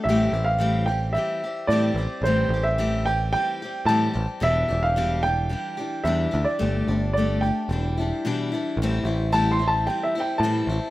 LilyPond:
<<
  \new Staff \with { instrumentName = "Grand piano" } { \time 4/4 \key a \minor \tempo 4 = 110 e''8. f''8. g''8 e''4 d''4 | c''8. e''8. g''8 g''4 a''8. r16 | e''8. f''8. g''4. e''8. d''16~ | d''4 d''8 g''2 r8 |
r4 \tuplet 3/2 { a''8 c'''8 a''8 g''8 e''8 g''8 } a''4 | }
  \new Staff \with { instrumentName = "Steel-string acoustic guitar" } { \time 4/4 \key a \minor <a, e g c' g'>8 <g c' g'>8 <a, e g c' g'>8 <g c' g'>8 <e g c' g'>8 <g c' g'>8 <a, e g c' g'>8 <g c' g'>8 | <a, e g c' g'>8 <g c' g'>8 <a, e g c' g'>8 <g c' g'>8 <e g c' g'>8 <g c' g'>8 <a, e g c' g'>8 <g c' g'>8 | <e, b, e g d' g'>8 <e g d' g'>8 <e, b, e g d' g'>8 <e g d' g'>8 <e g d' g'>8 <e g d' g'>8 <e, b, e g d' g'>8 <e g d' g'>8 | <g a d' g'>8 <a d' g'>8 <g a d' g'>8 <a d' g'>8 <e g d' e'>8 <e g d' e'>8 <e, b, e g d' e'>8 <e g d' e'>8 |
<a, e g c' e'>8 <g c' e'>8 <a, e g c' e'>8 <g c' e'>8 <e g c' e'>8 <g c' e'>8 <a, e g c' e'>8 <g c' e'>8 | }
  \new Staff \with { instrumentName = "Picked electric bass" } { \clef bass \time 4/4 \key a \minor a,,8 a,,2 r8 a,8 a,,16 r16 | a,,8 a,,2 r8 a,8 a,,16 r16 | e,,8 e,,2 r8 e,8 d,16 r16 | g,,8 g,,4. e,,4 r4 |
a,,8 a,,2 r8 a,8 a,,16 r16 | }
>>